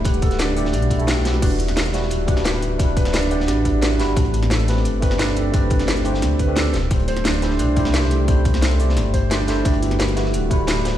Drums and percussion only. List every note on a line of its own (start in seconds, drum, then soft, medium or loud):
0.05 kick loud
0.05 closed hi-hat medium
0.05 closed hi-hat loud
0.14 closed hi-hat soft
0.22 kick loud
0.22 closed hi-hat medium
0.31 snare soft
0.31 closed hi-hat soft
0.39 snare loud
0.39 closed hi-hat medium
0.39 closed hi-hat loud
0.57 closed hi-hat medium
0.57 open hi-hat medium
0.65 snare medium
0.73 closed hi-hat medium
0.73 closed hi-hat loud
0.82 closed hi-hat soft
0.91 kick medium
0.91 closed hi-hat medium
1.00 closed hi-hat soft
1.07 snare loud
1.07 closed hi-hat medium
1.25 snare loud
1.25 snare soft
1.25 closed hi-hat medium
1.34 snare soft
1.42 kick loud
1.42 closed hi-hat medium
1.42 closed hi-hat loud
1.42 crash loud
1.50 closed hi-hat soft
1.58 closed hi-hat medium
1.68 snare medium
1.68 closed hi-hat soft
1.77 snare loud
1.77 closed hi-hat medium
1.85 closed hi-hat soft
1.93 snare medium
1.93 closed hi-hat medium
2.03 snare soft
2.11 closed hi-hat medium
2.28 kick loud
2.28 closed hi-hat medium
2.36 snare soft
2.36 snare medium
2.44 snare loud
2.44 closed hi-hat medium
2.53 snare soft
2.62 closed hi-hat medium
2.79 kick loud
2.79 closed hi-hat loud
2.79 closed hi-hat medium
2.97 kick loud
2.97 closed hi-hat medium
3.05 snare soft
3.05 closed hi-hat soft
3.13 snare loud
3.13 closed hi-hat medium
3.22 closed hi-hat soft
3.31 closed hi-hat medium
3.31 open hi-hat medium
3.40 snare medium
3.48 snare medium
3.48 closed hi-hat medium
3.48 closed hi-hat loud
3.65 kick medium
3.65 closed hi-hat medium
3.82 snare loud
3.82 closed hi-hat medium
3.82 closed hi-hat loud
3.99 snare soft
3.99 snare medium
3.99 closed hi-hat medium
4.16 kick loud
4.16 closed hi-hat medium
4.25 closed hi-hat soft
4.34 closed hi-hat medium
4.43 snare soft
4.43 closed hi-hat soft
4.50 snare loud
4.50 closed hi-hat medium
4.59 closed hi-hat soft
4.68 snare medium
4.68 closed hi-hat medium
4.77 snare soft
4.85 closed hi-hat medium
5.02 kick loud
5.02 closed hi-hat medium
5.10 snare soft
5.10 snare medium
5.19 snare loud
5.19 closed hi-hat medium
5.28 snare medium
5.36 closed hi-hat medium
5.54 kick loud
5.54 closed hi-hat loud
5.54 closed hi-hat medium
5.70 kick loud
5.70 closed hi-hat medium
5.79 snare soft
5.79 closed hi-hat soft
5.88 snare loud
5.88 closed hi-hat medium
5.97 closed hi-hat soft
6.05 closed hi-hat medium
6.05 open hi-hat medium
6.14 snare medium
6.22 snare medium
6.22 closed hi-hat medium
6.39 kick medium
6.39 closed hi-hat medium
6.56 snare loud
6.56 closed hi-hat medium
6.73 snare soft
6.73 snare medium
6.73 closed hi-hat medium
6.91 kick loud
6.91 closed hi-hat medium
7.00 closed hi-hat soft
7.08 closed hi-hat medium
7.16 snare soft
7.16 closed hi-hat soft
7.25 snare loud
7.25 closed hi-hat medium
7.34 closed hi-hat soft
7.42 snare medium
7.42 closed hi-hat medium
7.50 snare soft
7.59 closed hi-hat medium
7.76 kick loud
7.76 closed hi-hat medium
7.85 snare medium
7.85 snare soft
7.94 snare loud
7.94 closed hi-hat medium
8.03 snare soft
8.11 closed hi-hat medium
8.28 kick loud
8.28 closed hi-hat medium
8.45 kick loud
8.45 closed hi-hat medium
8.54 snare soft
8.54 closed hi-hat soft
8.62 snare loud
8.62 closed hi-hat loud
8.62 closed hi-hat medium
8.71 closed hi-hat soft
8.80 closed hi-hat medium
8.80 open hi-hat medium
8.89 snare medium
8.96 snare medium
8.96 closed hi-hat medium
9.14 kick medium
9.14 closed hi-hat medium
9.31 snare loud
9.31 closed hi-hat medium
9.47 snare soft
9.47 snare medium
9.47 closed hi-hat medium
9.65 kick loud
9.65 closed hi-hat medium
9.65 closed hi-hat loud
9.74 closed hi-hat soft
9.82 closed hi-hat medium
9.91 snare soft
9.91 closed hi-hat soft
10.00 snare loud
10.00 closed hi-hat medium
10.08 closed hi-hat soft
10.17 snare medium
10.17 closed hi-hat medium
10.25 snare soft
10.34 closed hi-hat medium
10.34 closed hi-hat loud
10.51 kick loud
10.51 closed hi-hat medium
10.67 snare loud
10.67 closed hi-hat loud
10.76 snare medium
10.85 snare loud
10.85 closed hi-hat medium
10.94 closed hi-hat soft